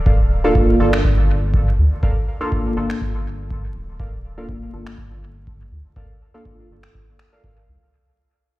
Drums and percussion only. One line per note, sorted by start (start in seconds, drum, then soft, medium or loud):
0.06 kick loud
0.55 kick loud
0.93 finger snap medium
1.04 kick loud
1.54 kick loud
2.03 kick loud
2.52 kick loud
2.90 finger snap medium
3.01 kick loud
3.50 kick loud
4.00 kick loud
4.49 kick loud
4.87 finger snap medium
4.98 kick loud
5.47 kick loud
5.96 kick loud
6.45 kick loud
6.83 finger snap medium
6.95 kick loud
7.19 finger snap medium
7.44 kick loud